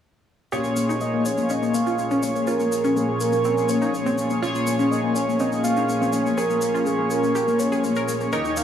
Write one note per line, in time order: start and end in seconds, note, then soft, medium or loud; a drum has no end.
0.52 4.40 A#2 medium
0.52 8.29 A#2 medium
0.52 8.29 F3 medium
0.52 4.40 A#3 medium
0.52 8.64 C#4 medium
0.52 4.40 F4 medium
0.52 0.60 G4 medium
0.52 8.29 G#4 medium
0.52 4.40 G#4 medium
0.52 4.40 C#5 medium
0.52 0.98 C#5 medium
0.52 shaker soft
0.64 0.72 A#3 medium
0.64 shaker soft
0.76 0.85 A#3 medium
0.76 shaker medium
0.89 0.97 D#4 medium
0.89 shaker soft
1.01 1.09 A#3 medium
1.01 1.27 D#5 medium
1.01 shaker soft
1.13 1.21 A#3 medium
1.25 1.51 C#5 medium
1.25 shaker medium
1.38 1.45 A#3 medium
1.38 shaker soft
1.49 1.58 C#4 medium
1.49 1.76 D#5 medium
1.49 shaker soft
1.62 1.70 A#3 medium
1.62 shaker soft
1.74 1.82 A#3 medium
1.74 2.22 F5 loud
1.74 shaker medium
1.87 1.94 F4 medium
1.87 shaker soft
1.98 2.06 A#3 medium
1.98 shaker soft
2.11 2.19 C#4 medium
2.11 shaker soft
2.23 2.31 A#3 medium
2.23 2.49 C#5 medium
2.23 shaker medium
2.35 2.43 A#3 medium
2.35 shaker soft
2.47 2.55 F4 medium
2.47 2.95 A#4 medium
2.47 shaker soft
2.60 2.67 A#3 medium
2.60 shaker soft
2.72 2.80 A#3 medium
2.72 shaker medium
2.84 2.92 C#4 medium
2.84 shaker soft
2.96 3.04 A#3 medium
2.96 3.22 G#4 medium
2.96 shaker soft
3.09 3.16 A#3 medium
3.20 3.44 A#4 medium
3.20 shaker medium
3.33 3.41 A#3 medium
3.33 shaker soft
3.44 3.53 C4 medium
3.44 3.70 A#4 medium
3.44 shaker medium
3.57 3.65 A#3 medium
3.57 shaker soft
3.69 3.77 A#3 medium
3.69 3.93 C#5 medium
3.69 shaker medium
3.82 3.89 D#4 medium
3.82 shaker soft
3.93 4.02 A#3 medium
3.93 4.28 C#5 medium
3.93 shaker soft
4.06 4.14 C4 medium
4.06 shaker soft
4.18 4.26 A#3 medium
4.18 shaker medium
4.30 4.38 A#3 medium
4.30 shaker soft
4.42 8.30 A#2 medium
4.42 8.30 A#3 medium
4.42 4.50 F4 medium
4.42 8.30 F4 medium
4.42 8.30 G#4 medium
4.42 4.92 C#5 medium
4.42 8.30 C#5 medium
4.42 shaker medium
4.55 4.62 A#3 medium
4.55 shaker soft
4.67 4.75 A#3 medium
4.67 shaker loud
4.79 4.87 C#4 medium
4.79 shaker soft
4.91 4.99 A#3 medium
4.91 5.15 D#5 medium
4.91 shaker medium
5.04 5.11 A#3 medium
5.15 5.41 C#5 medium
5.15 shaker medium
5.28 5.36 A#3 medium
5.28 shaker soft
5.39 5.48 C4 medium
5.39 5.63 D#5 loud
5.39 shaker medium
5.52 5.60 A#3 medium
5.52 shaker soft
5.64 5.72 A#3 medium
5.64 6.10 F5 loud
5.64 shaker medium
5.76 5.84 D#4 medium
5.76 shaker soft
5.89 5.97 A#3 medium
5.89 shaker soft
6.01 6.09 C4 medium
6.01 shaker soft
6.13 6.21 A#3 medium
6.13 6.39 C#5 medium
6.13 shaker medium
6.26 6.33 A#3 medium
6.26 shaker soft
6.37 6.46 G#4 medium
6.37 6.87 A#4 loud
6.37 shaker soft
6.50 6.58 A#3 medium
6.50 shaker soft
6.61 6.70 A#3 medium
6.61 shaker medium
6.74 6.82 F4 medium
6.74 shaker soft
6.86 6.94 A#3 medium
6.86 7.12 G#4 medium
6.86 shaker soft
6.99 7.06 A#3 medium
7.10 7.34 A#4 medium
7.10 shaker medium
7.23 7.31 A#3 medium
7.23 shaker soft
7.35 7.43 G4 medium
7.35 7.60 A#4 medium
7.35 shaker soft
7.48 7.55 A#3 medium
7.48 shaker soft
7.59 7.67 A#3 medium
7.59 7.83 C#5 medium
7.59 shaker medium
7.72 7.80 G#4 medium
7.72 shaker soft
7.84 7.92 A#3 medium
7.84 8.18 C#5 loud
7.84 shaker soft
7.96 8.04 A#4 medium
7.96 shaker soft
8.08 8.16 A#3 medium
8.08 shaker medium
8.21 8.28 A#3 medium
8.21 shaker soft
8.32 8.64 D#2 medium
8.32 8.64 D#3 medium
8.32 8.64 A#3 medium
8.32 8.64 D#4 medium
8.32 8.64 G4 medium
8.32 8.41 A#4 medium
8.32 8.64 C#5 medium
8.32 8.58 D#5 loud
8.32 8.64 G5 medium
8.32 shaker soft
8.45 8.53 D#4 medium
8.45 shaker soft
8.57 8.64 D#4 medium
8.57 8.64 F5 loud
8.57 shaker medium